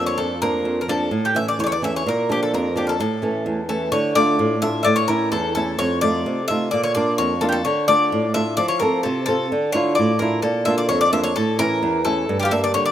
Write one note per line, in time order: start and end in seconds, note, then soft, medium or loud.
0.00 0.17 F2 medium
0.00 0.33 F3 soft
0.00 0.33 A#3 soft
0.00 0.33 D4 soft
0.06 0.18 C#5 medium
0.18 0.64 F2 medium
0.18 0.41 A4 medium
0.42 0.80 F3 soft
0.42 0.80 A#3 soft
0.42 0.80 D4 medium
0.42 0.80 A#4 medium
0.65 1.11 F2 medium
0.81 0.89 A#4 medium
0.88 1.08 F3 soft
0.88 1.08 A#3 soft
0.88 1.08 D4 soft
0.88 1.26 A4 medium
1.11 1.58 A2 medium
1.25 1.37 G4 medium
1.35 1.73 E3 soft
1.35 1.73 A3 soft
1.35 1.73 C#4 soft
1.35 1.47 E5 medium
1.48 1.59 D5 medium
1.59 2.05 E2 medium
1.59 1.63 C#5 medium
1.64 1.72 C#5 medium
1.64 1.66 D5 medium
1.72 1.83 D5 medium
1.82 2.02 E3 soft
1.82 2.02 A3 soft
1.82 2.02 C#4 soft
1.82 1.96 E5 medium
1.96 2.08 C#5 medium
2.06 2.52 A#2 medium
2.06 2.29 A#4 medium
2.29 2.67 F3 soft
2.29 2.67 A#3 soft
2.29 2.67 D4 soft
2.29 2.42 G4 medium
2.43 2.54 A4 medium
2.54 2.99 F2 medium
2.54 2.76 A#4 medium
2.76 2.95 F3 soft
2.76 2.95 A#3 soft
2.76 2.95 D4 soft
2.76 2.85 G4 medium
2.87 2.99 A4 medium
2.87 2.89 A#4 soft
3.00 3.45 A2 medium
3.00 3.66 A4 medium
3.22 3.60 E3 soft
3.22 3.60 A3 soft
3.22 3.60 C#4 medium
3.46 3.91 E2 medium
3.69 3.88 E3 soft
3.69 3.88 A3 soft
3.69 3.88 C#4 soft
3.69 3.91 A4 medium
3.92 4.38 D3 medium
3.92 4.15 C#5 medium
4.15 4.53 A3 soft
4.15 4.54 D4 soft
4.15 4.54 F4 soft
4.15 4.59 D5 medium
4.39 4.85 A2 medium
4.62 4.82 A3 soft
4.62 4.82 D4 soft
4.62 4.81 F4 medium
4.62 4.81 E5 medium
4.83 5.31 A2 medium
4.83 4.96 D5 loud
4.83 4.86 E5 medium
4.96 5.09 C#5 medium
5.08 5.46 A3 soft
5.08 5.46 C#4 soft
5.08 5.47 E4 medium
5.08 5.30 A#4 medium
5.32 5.78 E2 medium
5.32 5.54 A4 medium
5.55 5.75 A3 soft
5.55 5.75 C#4 soft
5.55 5.75 E4 medium
5.55 5.79 A4 medium
5.79 6.24 F2 medium
5.79 6.01 C#5 medium
6.01 6.40 A3 soft
6.01 6.40 D#4 soft
6.01 6.40 F4 medium
6.01 6.47 D5 loud
6.26 6.71 C3 medium
6.48 6.68 A3 soft
6.48 6.68 D#4 soft
6.48 6.68 F4 medium
6.48 6.71 E5 medium
6.71 7.18 A#2 medium
6.71 6.82 D5 medium
6.83 6.94 C#5 medium
6.95 7.33 A#3 medium
6.95 7.33 D4 soft
6.95 7.33 F4 medium
6.95 7.17 D5 medium
7.18 7.64 F2 medium
7.18 7.40 C#5 medium
7.41 7.60 A#3 soft
7.41 7.61 D4 soft
7.41 7.61 F4 medium
7.41 7.47 A4 medium
7.49 7.54 G4 medium
7.49 7.64 A4 medium
7.65 8.10 D3 medium
7.65 7.86 C#5 medium
7.88 8.25 A3 soft
7.88 8.25 D4 soft
7.88 8.26 F4 medium
7.88 8.34 D5 medium
8.12 8.57 A2 medium
8.34 8.53 A3 soft
8.34 8.54 D4 soft
8.34 8.54 F4 medium
8.34 8.56 E5 medium
8.57 9.03 F3 medium
8.57 8.68 D5 medium
8.68 8.81 C#5 medium
8.80 9.18 C4 soft
8.80 9.19 F4 soft
8.80 9.19 A4 medium
8.80 9.02 A#4 medium
9.03 9.50 C3 medium
9.03 9.25 A4 medium
9.26 9.46 C4 soft
9.26 9.46 F4 soft
9.26 9.70 A4 medium
9.26 9.47 A4 medium
9.52 9.96 D3 medium
9.72 10.11 D4 soft
9.72 10.11 E4 soft
9.72 10.12 F4 medium
9.72 9.95 C#5 medium
9.95 10.43 A2 medium
9.95 10.17 D5 medium
10.19 10.39 D4 soft
10.19 10.40 E4 soft
10.19 10.40 F4 medium
10.19 10.41 A#4 medium
10.42 10.88 A#2 medium
10.42 11.08 A4 medium
10.65 11.04 A#3 soft
10.65 11.04 D4 soft
10.65 11.04 F4 medium
10.65 10.77 E5 medium
10.78 10.88 D5 medium
10.89 11.35 F2 medium
10.89 11.00 C#5 medium
11.01 11.12 D5 medium
11.12 11.31 A#3 soft
11.12 11.31 D4 soft
11.12 11.32 F4 soft
11.12 11.23 E5 medium
11.24 11.36 C#5 medium
11.36 11.81 A2 medium
11.36 11.57 A4 medium
11.59 11.96 E3 soft
11.59 11.96 C#4 soft
11.59 11.97 E4 soft
11.59 12.02 A#4 medium
11.83 12.27 E2 medium
12.05 12.24 A3 soft
12.05 12.24 C#4 soft
12.05 12.24 E4 medium
12.05 12.39 A4 medium
12.29 12.74 G2 medium
12.40 12.46 F4 medium
12.40 12.42 G4 medium
12.45 12.51 G4 medium
12.51 12.89 G3 soft
12.51 12.89 A#3 soft
12.51 12.89 D4 medium
12.51 12.62 E5 medium
12.64 12.74 D5 medium
12.74 12.92 D3 medium
12.74 12.85 C#5 medium
12.86 12.92 D5 medium